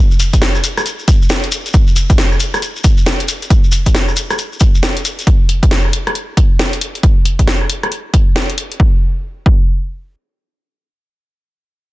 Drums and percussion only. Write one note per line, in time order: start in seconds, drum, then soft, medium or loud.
0.11 shekere soft
0.20 open hi-hat medium
0.20 shekere medium
0.33 kick medium
0.33 closed hi-hat medium
0.33 shekere soft
0.42 cross-stick medium
0.42 snare loud
0.42 closed hi-hat medium
0.42 shekere medium
0.55 cross-stick soft
0.55 shekere soft
0.64 open hi-hat medium
0.64 shekere loud
0.77 cross-stick medium
0.77 closed hi-hat soft
0.77 shekere soft
0.86 closed hi-hat medium
0.86 shekere medium
0.99 shekere soft
1.08 kick loud
1.08 open hi-hat medium
1.08 shekere medium
1.22 shekere soft
1.29 snare loud
1.29 closed hi-hat medium
1.29 shekere medium
1.43 closed hi-hat medium
1.43 shekere soft
1.52 open hi-hat medium
1.52 shekere medium
1.66 closed hi-hat soft
1.66 shekere soft
1.73 kick loud
1.73 closed hi-hat medium
1.73 shekere medium
1.87 shekere soft
1.96 open hi-hat medium
1.96 shekere medium
2.10 kick loud
2.10 closed hi-hat medium
2.10 shekere soft
2.18 cross-stick soft
2.18 snare loud
2.18 closed hi-hat medium
2.18 shekere soft
2.32 cross-stick soft
2.32 shekere soft
2.40 open hi-hat medium
2.40 shekere medium
2.54 cross-stick medium
2.54 closed hi-hat soft
2.54 shekere soft
2.62 closed hi-hat medium
2.62 shekere medium
2.76 shekere soft
2.84 kick loud
2.84 open hi-hat loud
2.84 shekere medium
2.97 shekere soft
3.06 snare loud
3.06 closed hi-hat medium
3.06 shekere soft
3.20 closed hi-hat medium
3.20 shekere soft
3.28 open hi-hat loud
3.28 shekere medium
3.42 closed hi-hat soft
3.42 shekere soft
3.50 kick loud
3.50 closed hi-hat medium
3.50 shekere soft
3.64 shekere soft
3.72 open hi-hat medium
3.72 shekere medium
3.86 kick medium
3.86 closed hi-hat medium
3.86 shekere soft
3.95 cross-stick soft
3.95 snare loud
3.95 closed hi-hat medium
3.95 shekere soft
4.08 cross-stick soft
4.08 shekere soft
4.16 open hi-hat loud
4.16 shekere medium
4.30 cross-stick medium
4.30 closed hi-hat soft
4.30 shekere soft
4.38 closed hi-hat medium
4.38 shekere soft
4.53 shekere soft
4.60 kick loud
4.60 open hi-hat loud
4.60 shekere medium
4.75 shekere soft
4.83 snare loud
4.83 closed hi-hat medium
4.83 shekere soft
4.97 closed hi-hat medium
4.97 shekere soft
5.05 open hi-hat medium
5.05 shekere medium
5.19 closed hi-hat soft
5.19 shekere soft
5.27 kick loud
5.27 closed hi-hat medium
5.49 open hi-hat loud
5.63 kick medium
5.63 closed hi-hat medium
5.71 cross-stick medium
5.71 snare loud
5.71 closed hi-hat medium
5.85 cross-stick soft
5.93 open hi-hat loud
6.07 cross-stick medium
6.07 closed hi-hat soft
6.15 closed hi-hat medium
6.37 kick loud
6.37 open hi-hat loud
6.59 snare loud
6.59 closed hi-hat medium
6.73 closed hi-hat medium
6.81 open hi-hat loud
6.95 closed hi-hat soft
7.03 kick loud
7.03 closed hi-hat medium
7.25 open hi-hat loud
7.39 kick medium
7.39 closed hi-hat medium
7.48 cross-stick medium
7.48 snare loud
7.48 closed hi-hat medium
7.61 cross-stick soft
7.70 open hi-hat loud
7.83 cross-stick medium
7.83 closed hi-hat soft
7.92 closed hi-hat medium
8.14 kick loud
8.14 open hi-hat loud
8.36 snare loud
8.36 closed hi-hat medium
8.50 closed hi-hat medium
8.58 open hi-hat loud
8.72 closed hi-hat soft
8.80 kick loud
9.46 kick loud